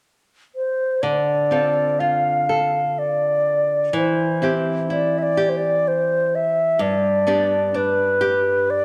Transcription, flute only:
0.55 C5
1.02 D5
2.00 F5
2.99 D5
3.97 C5
4.91 D5
5.18 E5
5.23 D5
5.49 C5
5.57 D5
5.88 C5
6.35 E5
6.81 D5
7.76 B4
8.70 D5

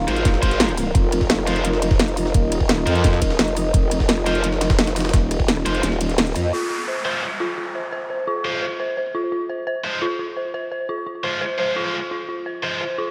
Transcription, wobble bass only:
0.08 G#1
0.95 F1
2.34 D#1
3.22 D#1
3.39 F1
3.74 F1
5.14 D#1
5.66 F1
5.83 D#1
6.36 F2

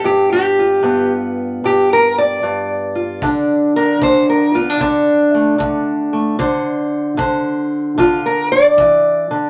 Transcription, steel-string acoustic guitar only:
Already playing: B3
0.04 G2 G4
0.32 G4
0.59 F4
0.83 G2 B3
1.64 G2 G4
1.93 A#4
2.18 D5
2.43 G2
2.95 F4
3.23 D3 D4
3.76 D4 A#4
4.02 D3 C5
4.29 A#4
4.55 B3 F4
4.70 D4
4.80 D3 D4
5.34 A3
5.58 D3
6.13 A3
6.39 D3 C5
7.17 D3 C5
7.98 D3 F4
8.26 A#4
8.52 D5
8.80 E3
9.31 D3

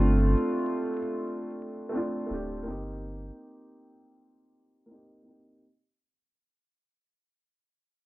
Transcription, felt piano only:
Already playing: A3 C4 D4 F4
1.89 A3 C4
1.94 D4 F4
2.26 A3 C4
2.31 D4 G4
2.63 A#3 C4
2.68 D#4 G4
4.86 A#3 C4
4.91 D#4 G4
5.23 A#3 C4
5.28 D#4 G4

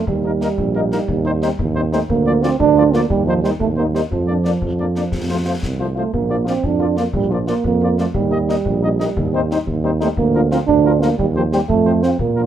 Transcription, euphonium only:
0.07 G3
1.93 A3
2.10 A#3
2.42 C4
2.60 D4
2.93 A#3
3.09 G3
3.26 F3
3.42 G3
3.59 A3
3.77 A#3
3.93 G3
4.11 F3
5.97 A3
6.13 A#3
6.48 C4
6.65 D4
6.99 A#3
7.15 G3
7.32 F3
7.48 A#3
7.66 A#3
7.99 A3
8.15 G3
10.00 A3
10.18 A#3
10.51 C4
10.67 D4
11.00 A#3
11.17 G3
11.36 F3
11.53 G3
11.69 A3
12.03 C4
12.20 A#3

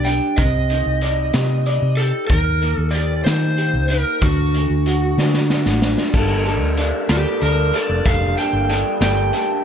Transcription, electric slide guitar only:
0.05 G5
0.36 D#5
1.97 A4
2.27 A#4
2.75 A4
2.91 D5
3.24 C5
3.89 A#4
4.21 F#4
7.11 G4
7.43 A#4
7.75 D5
8.06 F5
8.38 G5
9.02 G5

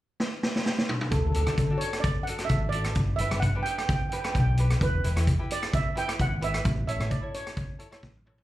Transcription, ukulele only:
1.35 D4 F#4 A4
1.47 D4 F#4 A4
1.70 D4 F#4 A4
2.27 D4 F#4 A4
2.39 D4 F#4 A4
2.73 D4 F#4 A4
3.19 D4 G4 B4
3.31 D4 G4 B4
3.55 D4 G4 B4
4.12 D4 G4 B4
4.24 D4 G4 B4
4.58 D4 G4 B4
5.04 E4 G4 B4
5.16 E4 G4 B4
5.39 E4 G4 B4
5.95 E4 G4 B4
6.08 E4 G4 B4
6.41 E4 G4 B4
6.87 E4 A4 C#5
6.99 E4 A4 C#5
7.21 E4 A4 C#5
7.79 E4 A4 C#5
7.91 E4 A4 C#5
8.25 E4 A4 C#5

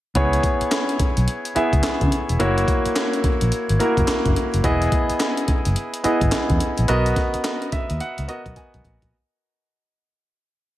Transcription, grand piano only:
0.15 B3 E4 G#4 C#5
1.55 B3 E4 G#4 E5
2.39 A#3 E4 F#4 C#5
3.79 A#3 E4 F#4 A#4
4.64 B3 E4 G#4 D#5
6.04 B3 E4 G#4 D#5
6.88 B3 F#4 A#4 D#5
7.73 E5
8.01 F#5
8.28 B3 F#4 A#4 D#5
8.57 G#5

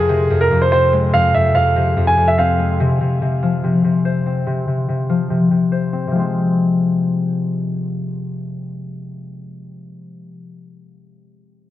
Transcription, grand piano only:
Already playing: G#4
0.41 A#4
0.62 C5
0.72 C5
1.14 F5
1.34 E5
1.55 F5
2.07 G#5
2.28 E5
2.38 F5

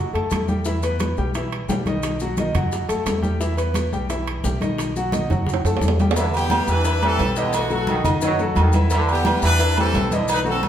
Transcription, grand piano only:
0.13 A3 A4 A5
0.48 G3 G4 G5
0.65 E3 E4 E5
0.83 B3 B4 B5
1.18 G3 G4 G5
1.35 E3 E4 E5
1.69 G3 G4 G5
1.86 D#3 D#4 D#5
2.21 F#3 F#4 F#5
2.38 D#3 D#4 D#5
2.55 F#3 F#4 F#5
2.89 A3 A4 A5
3.22 G3 G4 G5
3.40 E3 E4 E5
3.57 B3 B4 B5
3.93 G3 G4 G5
4.09 E3 E4 E5
4.44 G3 G4 G5
4.61 D#3 D#4 D#5
4.97 F#3 F#4 F#5
5.13 D#3 D#4 D#5
5.30 F#3 F#4 F#5
5.66 A3 A4 A5
6.01 G3 G4 G5
6.17 E3 E4 E5
6.50 G3 G4 B4
6.85 E3 E4 E5
7.02 G3 G4 B4
7.37 E3 E4 D#5
7.70 F#3 F#4 A4
8.04 D#3 D#4 D#5
8.22 D#3 D#4 D#5
8.40 F#3 F#4 A4
8.74 E3 E4 E5
8.91 E3 E4 E5
9.26 G3 G4 B4
9.59 E3 E4 E5
9.77 G3 G4 B4
10.12 E3 E4 D#5
10.45 F#3 F#4 A4

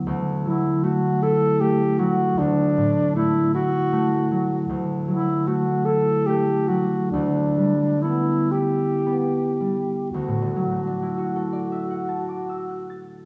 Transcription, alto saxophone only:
0.44 E4
0.84 F#4
1.23 A4
1.61 G4
1.99 F#4
2.38 D4
3.16 E4
3.55 F#4
5.08 E4
5.47 F#4
5.85 A4
6.26 G4
6.68 F#4
7.11 D4
8.02 E4
8.52 G4
10.11 F#4

